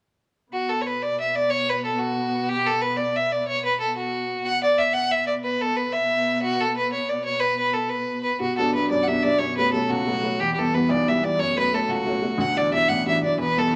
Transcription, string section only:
0.50 4.45 B2 medium
0.50 4.45 B3 medium
4.46 8.40 B2 medium
4.46 8.39 B3 medium
8.40 12.36 B2 medium
8.40 12.36 B3 medium
12.37 13.76 B2 medium
12.37 13.76 B3 medium

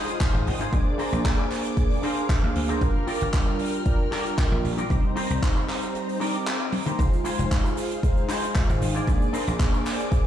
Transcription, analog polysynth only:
0.00 0.69 G#3 medium
0.00 0.70 D#4 medium
0.00 0.70 F4 medium
0.00 0.70 C5 loud
0.72 2.00 A#3 medium
0.72 2.00 D4 medium
0.72 2.01 G#4 medium
0.72 2.01 D5 loud
2.02 2.78 A#3 medium
2.02 2.79 D4 medium
2.02 2.79 G#4 medium
2.02 2.79 F5 medium
2.81 3.83 G3 medium
2.81 3.83 D4 medium
2.81 3.83 F4 medium
2.81 3.83 A#4 loud
3.85 4.87 G3 medium
3.85 4.87 D4 medium
3.85 4.88 F4 medium
3.85 4.88 A#4 loud
4.90 6.17 G3 medium
4.90 6.18 C4 medium
4.90 6.18 D#4 medium
4.90 6.18 C5 medium
6.20 6.96 G3 medium
6.20 6.96 C4 medium
6.20 6.96 D#4 medium
6.20 6.97 D6 medium
6.98 8.00 G#3 medium
6.98 8.00 D#4 medium
6.98 8.01 F4 medium
6.98 8.01 C5 loud
8.03 9.04 G#3 loud
8.03 9.05 D#4 medium
8.03 9.05 F4 medium
8.03 9.05 C5 loud
9.07 10.27 A#3 medium
9.07 10.27 D4 medium
9.07 10.27 G#4 medium
9.07 10.27 D5 medium

